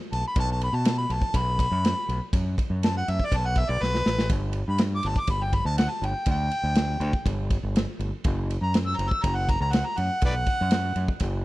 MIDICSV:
0, 0, Header, 1, 4, 480
1, 0, Start_track
1, 0, Key_signature, 2, "minor"
1, 0, Tempo, 493016
1, 356, Time_signature, 4, 2, 24, 8
1, 11146, End_track
2, 0, Start_track
2, 0, Title_t, "Harmonica"
2, 0, Program_c, 0, 22
2, 129, Note_on_c, 0, 81, 93
2, 235, Note_off_c, 0, 81, 0
2, 267, Note_on_c, 0, 83, 90
2, 364, Note_off_c, 0, 83, 0
2, 386, Note_on_c, 0, 81, 106
2, 483, Note_off_c, 0, 81, 0
2, 505, Note_on_c, 0, 81, 80
2, 602, Note_off_c, 0, 81, 0
2, 620, Note_on_c, 0, 83, 98
2, 727, Note_on_c, 0, 81, 91
2, 742, Note_off_c, 0, 83, 0
2, 832, Note_off_c, 0, 81, 0
2, 842, Note_on_c, 0, 81, 85
2, 950, Note_off_c, 0, 81, 0
2, 955, Note_on_c, 0, 83, 99
2, 1097, Note_on_c, 0, 81, 89
2, 1111, Note_off_c, 0, 83, 0
2, 1330, Note_on_c, 0, 83, 110
2, 1345, Note_off_c, 0, 81, 0
2, 2251, Note_off_c, 0, 83, 0
2, 2771, Note_on_c, 0, 81, 90
2, 2873, Note_off_c, 0, 81, 0
2, 2894, Note_on_c, 0, 78, 91
2, 3020, Note_on_c, 0, 76, 90
2, 3035, Note_off_c, 0, 78, 0
2, 3165, Note_on_c, 0, 74, 103
2, 3180, Note_off_c, 0, 76, 0
2, 3275, Note_on_c, 0, 81, 89
2, 3290, Note_off_c, 0, 74, 0
2, 3370, Note_on_c, 0, 78, 95
2, 3385, Note_off_c, 0, 81, 0
2, 3495, Note_on_c, 0, 76, 100
2, 3510, Note_off_c, 0, 78, 0
2, 3600, Note_on_c, 0, 74, 92
2, 3615, Note_off_c, 0, 76, 0
2, 3723, Note_on_c, 0, 71, 109
2, 3737, Note_off_c, 0, 74, 0
2, 4182, Note_off_c, 0, 71, 0
2, 4569, Note_on_c, 0, 83, 96
2, 4672, Note_off_c, 0, 83, 0
2, 4826, Note_on_c, 0, 86, 95
2, 4943, Note_on_c, 0, 81, 97
2, 4957, Note_off_c, 0, 86, 0
2, 5055, Note_on_c, 0, 86, 99
2, 5070, Note_off_c, 0, 81, 0
2, 5155, Note_off_c, 0, 86, 0
2, 5166, Note_on_c, 0, 83, 92
2, 5286, Note_on_c, 0, 79, 92
2, 5301, Note_off_c, 0, 83, 0
2, 5399, Note_on_c, 0, 83, 100
2, 5413, Note_off_c, 0, 79, 0
2, 5506, Note_off_c, 0, 83, 0
2, 5511, Note_on_c, 0, 81, 91
2, 5623, Note_off_c, 0, 81, 0
2, 5627, Note_on_c, 0, 78, 97
2, 5741, Note_on_c, 0, 81, 81
2, 5756, Note_off_c, 0, 78, 0
2, 5894, Note_on_c, 0, 79, 83
2, 5909, Note_off_c, 0, 81, 0
2, 6116, Note_off_c, 0, 79, 0
2, 6144, Note_on_c, 0, 79, 111
2, 7060, Note_off_c, 0, 79, 0
2, 8400, Note_on_c, 0, 82, 92
2, 8509, Note_off_c, 0, 82, 0
2, 8629, Note_on_c, 0, 88, 99
2, 8739, Note_on_c, 0, 82, 97
2, 8753, Note_off_c, 0, 88, 0
2, 8865, Note_on_c, 0, 88, 103
2, 8880, Note_off_c, 0, 82, 0
2, 8987, Note_on_c, 0, 82, 89
2, 9001, Note_off_c, 0, 88, 0
2, 9107, Note_on_c, 0, 78, 102
2, 9122, Note_off_c, 0, 82, 0
2, 9252, Note_on_c, 0, 82, 95
2, 9267, Note_off_c, 0, 78, 0
2, 9353, Note_off_c, 0, 82, 0
2, 9359, Note_on_c, 0, 82, 96
2, 9474, Note_on_c, 0, 78, 95
2, 9488, Note_off_c, 0, 82, 0
2, 9597, Note_on_c, 0, 82, 94
2, 9612, Note_off_c, 0, 78, 0
2, 9715, Note_on_c, 0, 78, 106
2, 9730, Note_off_c, 0, 82, 0
2, 9950, Note_off_c, 0, 78, 0
2, 9982, Note_on_c, 0, 71, 85
2, 9982, Note_on_c, 0, 74, 85
2, 9982, Note_on_c, 0, 78, 121
2, 10069, Note_off_c, 0, 74, 0
2, 10070, Note_off_c, 0, 71, 0
2, 10905, Note_off_c, 0, 78, 0
2, 11146, End_track
3, 0, Start_track
3, 0, Title_t, "Fingered electric bass"
3, 0, Program_c, 1, 33
3, 120, Note_on_c, 1, 35, 84
3, 221, Note_off_c, 1, 35, 0
3, 353, Note_on_c, 1, 35, 108
3, 661, Note_off_c, 1, 35, 0
3, 708, Note_on_c, 1, 47, 76
3, 1018, Note_off_c, 1, 47, 0
3, 1069, Note_on_c, 1, 35, 79
3, 1173, Note_off_c, 1, 35, 0
3, 1306, Note_on_c, 1, 35, 91
3, 1615, Note_off_c, 1, 35, 0
3, 1669, Note_on_c, 1, 42, 99
3, 1875, Note_off_c, 1, 42, 0
3, 2032, Note_on_c, 1, 35, 79
3, 2134, Note_off_c, 1, 35, 0
3, 2271, Note_on_c, 1, 42, 100
3, 2476, Note_off_c, 1, 42, 0
3, 2628, Note_on_c, 1, 42, 88
3, 2936, Note_off_c, 1, 42, 0
3, 3001, Note_on_c, 1, 42, 92
3, 3098, Note_off_c, 1, 42, 0
3, 3231, Note_on_c, 1, 35, 96
3, 3538, Note_off_c, 1, 35, 0
3, 3592, Note_on_c, 1, 35, 101
3, 3693, Note_off_c, 1, 35, 0
3, 3711, Note_on_c, 1, 35, 80
3, 3926, Note_off_c, 1, 35, 0
3, 3954, Note_on_c, 1, 33, 78
3, 4168, Note_off_c, 1, 33, 0
3, 4189, Note_on_c, 1, 31, 94
3, 4497, Note_off_c, 1, 31, 0
3, 4555, Note_on_c, 1, 43, 82
3, 4861, Note_off_c, 1, 43, 0
3, 4913, Note_on_c, 1, 31, 87
3, 5014, Note_off_c, 1, 31, 0
3, 5143, Note_on_c, 1, 31, 90
3, 5454, Note_off_c, 1, 31, 0
3, 5502, Note_on_c, 1, 38, 94
3, 5711, Note_off_c, 1, 38, 0
3, 5858, Note_on_c, 1, 31, 82
3, 5966, Note_off_c, 1, 31, 0
3, 6106, Note_on_c, 1, 38, 101
3, 6313, Note_off_c, 1, 38, 0
3, 6459, Note_on_c, 1, 38, 95
3, 6772, Note_off_c, 1, 38, 0
3, 6816, Note_on_c, 1, 38, 101
3, 6926, Note_off_c, 1, 38, 0
3, 7061, Note_on_c, 1, 31, 99
3, 7374, Note_off_c, 1, 31, 0
3, 7431, Note_on_c, 1, 31, 99
3, 7637, Note_off_c, 1, 31, 0
3, 7783, Note_on_c, 1, 31, 96
3, 7890, Note_off_c, 1, 31, 0
3, 8033, Note_on_c, 1, 30, 105
3, 8341, Note_off_c, 1, 30, 0
3, 8386, Note_on_c, 1, 42, 83
3, 8697, Note_off_c, 1, 42, 0
3, 8748, Note_on_c, 1, 30, 86
3, 8854, Note_off_c, 1, 30, 0
3, 8998, Note_on_c, 1, 30, 98
3, 9305, Note_off_c, 1, 30, 0
3, 9352, Note_on_c, 1, 37, 101
3, 9559, Note_off_c, 1, 37, 0
3, 9715, Note_on_c, 1, 42, 91
3, 9819, Note_off_c, 1, 42, 0
3, 9950, Note_on_c, 1, 35, 90
3, 10159, Note_off_c, 1, 35, 0
3, 10330, Note_on_c, 1, 42, 95
3, 10634, Note_off_c, 1, 42, 0
3, 10668, Note_on_c, 1, 42, 93
3, 10776, Note_off_c, 1, 42, 0
3, 10912, Note_on_c, 1, 30, 101
3, 11146, Note_off_c, 1, 30, 0
3, 11146, End_track
4, 0, Start_track
4, 0, Title_t, "Drums"
4, 124, Note_on_c, 9, 51, 67
4, 222, Note_off_c, 9, 51, 0
4, 347, Note_on_c, 9, 51, 89
4, 351, Note_on_c, 9, 36, 110
4, 444, Note_off_c, 9, 51, 0
4, 449, Note_off_c, 9, 36, 0
4, 598, Note_on_c, 9, 51, 72
4, 695, Note_off_c, 9, 51, 0
4, 829, Note_on_c, 9, 51, 100
4, 841, Note_on_c, 9, 38, 109
4, 926, Note_off_c, 9, 51, 0
4, 938, Note_off_c, 9, 38, 0
4, 1072, Note_on_c, 9, 51, 67
4, 1169, Note_off_c, 9, 51, 0
4, 1184, Note_on_c, 9, 36, 86
4, 1281, Note_off_c, 9, 36, 0
4, 1305, Note_on_c, 9, 36, 101
4, 1308, Note_on_c, 9, 51, 99
4, 1402, Note_off_c, 9, 36, 0
4, 1405, Note_off_c, 9, 51, 0
4, 1548, Note_on_c, 9, 36, 80
4, 1555, Note_on_c, 9, 51, 71
4, 1645, Note_off_c, 9, 36, 0
4, 1652, Note_off_c, 9, 51, 0
4, 1797, Note_on_c, 9, 51, 86
4, 1808, Note_on_c, 9, 38, 108
4, 1894, Note_off_c, 9, 51, 0
4, 1906, Note_off_c, 9, 38, 0
4, 2038, Note_on_c, 9, 51, 64
4, 2136, Note_off_c, 9, 51, 0
4, 2269, Note_on_c, 9, 36, 105
4, 2271, Note_on_c, 9, 51, 85
4, 2366, Note_off_c, 9, 36, 0
4, 2368, Note_off_c, 9, 51, 0
4, 2512, Note_on_c, 9, 36, 78
4, 2519, Note_on_c, 9, 51, 66
4, 2609, Note_off_c, 9, 36, 0
4, 2617, Note_off_c, 9, 51, 0
4, 2756, Note_on_c, 9, 51, 84
4, 2768, Note_on_c, 9, 38, 107
4, 2854, Note_off_c, 9, 51, 0
4, 2865, Note_off_c, 9, 38, 0
4, 3000, Note_on_c, 9, 51, 66
4, 3098, Note_off_c, 9, 51, 0
4, 3111, Note_on_c, 9, 36, 77
4, 3208, Note_off_c, 9, 36, 0
4, 3230, Note_on_c, 9, 36, 99
4, 3233, Note_on_c, 9, 51, 91
4, 3327, Note_off_c, 9, 36, 0
4, 3330, Note_off_c, 9, 51, 0
4, 3461, Note_on_c, 9, 51, 67
4, 3466, Note_on_c, 9, 36, 83
4, 3558, Note_off_c, 9, 51, 0
4, 3563, Note_off_c, 9, 36, 0
4, 3728, Note_on_c, 9, 38, 56
4, 3825, Note_off_c, 9, 38, 0
4, 3841, Note_on_c, 9, 38, 61
4, 3938, Note_off_c, 9, 38, 0
4, 3953, Note_on_c, 9, 38, 85
4, 4050, Note_off_c, 9, 38, 0
4, 4075, Note_on_c, 9, 38, 91
4, 4173, Note_off_c, 9, 38, 0
4, 4181, Note_on_c, 9, 51, 96
4, 4184, Note_on_c, 9, 36, 102
4, 4279, Note_off_c, 9, 51, 0
4, 4282, Note_off_c, 9, 36, 0
4, 4408, Note_on_c, 9, 51, 67
4, 4505, Note_off_c, 9, 51, 0
4, 4656, Note_on_c, 9, 51, 90
4, 4668, Note_on_c, 9, 38, 112
4, 4754, Note_off_c, 9, 51, 0
4, 4765, Note_off_c, 9, 38, 0
4, 4895, Note_on_c, 9, 51, 75
4, 4993, Note_off_c, 9, 51, 0
4, 5021, Note_on_c, 9, 36, 85
4, 5119, Note_off_c, 9, 36, 0
4, 5133, Note_on_c, 9, 51, 93
4, 5139, Note_on_c, 9, 36, 100
4, 5231, Note_off_c, 9, 51, 0
4, 5236, Note_off_c, 9, 36, 0
4, 5382, Note_on_c, 9, 36, 80
4, 5382, Note_on_c, 9, 51, 70
4, 5479, Note_off_c, 9, 36, 0
4, 5480, Note_off_c, 9, 51, 0
4, 5626, Note_on_c, 9, 51, 94
4, 5638, Note_on_c, 9, 38, 103
4, 5724, Note_off_c, 9, 51, 0
4, 5735, Note_off_c, 9, 38, 0
4, 5875, Note_on_c, 9, 51, 66
4, 5973, Note_off_c, 9, 51, 0
4, 6091, Note_on_c, 9, 51, 84
4, 6101, Note_on_c, 9, 36, 111
4, 6188, Note_off_c, 9, 51, 0
4, 6198, Note_off_c, 9, 36, 0
4, 6342, Note_on_c, 9, 51, 67
4, 6440, Note_off_c, 9, 51, 0
4, 6575, Note_on_c, 9, 51, 90
4, 6586, Note_on_c, 9, 38, 115
4, 6672, Note_off_c, 9, 51, 0
4, 6684, Note_off_c, 9, 38, 0
4, 6824, Note_on_c, 9, 51, 68
4, 6922, Note_off_c, 9, 51, 0
4, 6945, Note_on_c, 9, 36, 90
4, 7042, Note_off_c, 9, 36, 0
4, 7065, Note_on_c, 9, 36, 94
4, 7070, Note_on_c, 9, 51, 88
4, 7162, Note_off_c, 9, 36, 0
4, 7168, Note_off_c, 9, 51, 0
4, 7306, Note_on_c, 9, 51, 67
4, 7307, Note_on_c, 9, 36, 90
4, 7404, Note_off_c, 9, 36, 0
4, 7404, Note_off_c, 9, 51, 0
4, 7551, Note_on_c, 9, 51, 85
4, 7563, Note_on_c, 9, 38, 114
4, 7648, Note_off_c, 9, 51, 0
4, 7660, Note_off_c, 9, 38, 0
4, 7792, Note_on_c, 9, 51, 58
4, 7890, Note_off_c, 9, 51, 0
4, 8025, Note_on_c, 9, 51, 83
4, 8031, Note_on_c, 9, 36, 109
4, 8122, Note_off_c, 9, 51, 0
4, 8128, Note_off_c, 9, 36, 0
4, 8280, Note_on_c, 9, 51, 69
4, 8378, Note_off_c, 9, 51, 0
4, 8509, Note_on_c, 9, 51, 90
4, 8521, Note_on_c, 9, 38, 110
4, 8607, Note_off_c, 9, 51, 0
4, 8618, Note_off_c, 9, 38, 0
4, 8753, Note_on_c, 9, 51, 79
4, 8851, Note_off_c, 9, 51, 0
4, 8873, Note_on_c, 9, 36, 82
4, 8970, Note_off_c, 9, 36, 0
4, 8994, Note_on_c, 9, 36, 102
4, 8994, Note_on_c, 9, 51, 100
4, 9091, Note_off_c, 9, 36, 0
4, 9092, Note_off_c, 9, 51, 0
4, 9236, Note_on_c, 9, 36, 88
4, 9239, Note_on_c, 9, 51, 71
4, 9334, Note_off_c, 9, 36, 0
4, 9337, Note_off_c, 9, 51, 0
4, 9473, Note_on_c, 9, 51, 98
4, 9485, Note_on_c, 9, 38, 117
4, 9570, Note_off_c, 9, 51, 0
4, 9582, Note_off_c, 9, 38, 0
4, 9711, Note_on_c, 9, 51, 72
4, 9808, Note_off_c, 9, 51, 0
4, 9945, Note_on_c, 9, 51, 88
4, 9954, Note_on_c, 9, 36, 110
4, 10042, Note_off_c, 9, 51, 0
4, 10051, Note_off_c, 9, 36, 0
4, 10187, Note_on_c, 9, 51, 68
4, 10191, Note_on_c, 9, 36, 80
4, 10285, Note_off_c, 9, 51, 0
4, 10288, Note_off_c, 9, 36, 0
4, 10423, Note_on_c, 9, 51, 97
4, 10435, Note_on_c, 9, 38, 111
4, 10520, Note_off_c, 9, 51, 0
4, 10532, Note_off_c, 9, 38, 0
4, 10666, Note_on_c, 9, 51, 69
4, 10764, Note_off_c, 9, 51, 0
4, 10791, Note_on_c, 9, 36, 84
4, 10889, Note_off_c, 9, 36, 0
4, 10901, Note_on_c, 9, 51, 86
4, 10911, Note_on_c, 9, 36, 95
4, 10998, Note_off_c, 9, 51, 0
4, 11008, Note_off_c, 9, 36, 0
4, 11146, End_track
0, 0, End_of_file